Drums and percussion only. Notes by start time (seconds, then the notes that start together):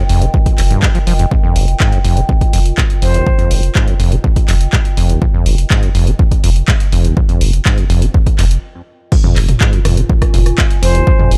0.09 open hi-hat
0.22 closed hi-hat
0.34 kick
0.46 kick, closed hi-hat
0.58 clap, open hi-hat
0.71 closed hi-hat
0.83 kick, clap
0.95 closed hi-hat
1.07 open hi-hat
1.19 closed hi-hat
1.31 kick
1.56 open hi-hat
1.68 closed hi-hat
1.80 kick, clap
1.92 closed hi-hat
2.05 open hi-hat
2.17 closed hi-hat
2.29 kick
2.41 kick, closed hi-hat
2.53 open hi-hat
2.66 closed hi-hat
2.78 kick, clap
2.90 closed hi-hat
3.02 open hi-hat
3.14 closed hi-hat
3.27 kick
3.39 closed hi-hat
3.51 open hi-hat
3.63 closed hi-hat
3.75 kick, clap
3.88 closed hi-hat
4.00 open hi-hat
4.12 closed hi-hat
4.24 kick
4.36 kick, closed hi-hat
4.48 clap, open hi-hat
4.61 closed hi-hat
4.73 kick, clap
4.85 closed hi-hat
4.97 open hi-hat
5.09 closed hi-hat
5.22 kick
5.46 open hi-hat
5.58 closed hi-hat
5.70 kick, clap
5.83 closed hi-hat
5.95 open hi-hat
6.07 closed hi-hat
6.19 kick
6.31 kick, closed hi-hat
6.44 open hi-hat
6.56 closed hi-hat
6.68 kick, clap
6.80 closed hi-hat
6.92 open hi-hat
7.05 closed hi-hat
7.17 kick
7.29 closed hi-hat
7.41 open hi-hat
7.53 closed hi-hat
7.65 kick, clap
7.78 closed hi-hat
7.90 open hi-hat
8.02 closed hi-hat
8.14 kick
8.26 kick, closed hi-hat
8.39 clap, open hi-hat
8.51 closed hi-hat
9.12 kick, crash
9.24 mid tom
9.36 clap, open hi-hat
9.49 closed hi-hat, mid tom
9.61 kick, clap
9.73 closed hi-hat
9.85 cross-stick, mid tom, open hi-hat
9.97 closed hi-hat
10.09 kick
10.22 kick, cross-stick, closed hi-hat
10.34 mid tom, open hi-hat
10.46 cross-stick, closed hi-hat
10.58 kick, clap
10.71 closed hi-hat
10.83 open hi-hat
10.95 closed hi-hat
11.07 kick
11.19 mid tom
11.31 open hi-hat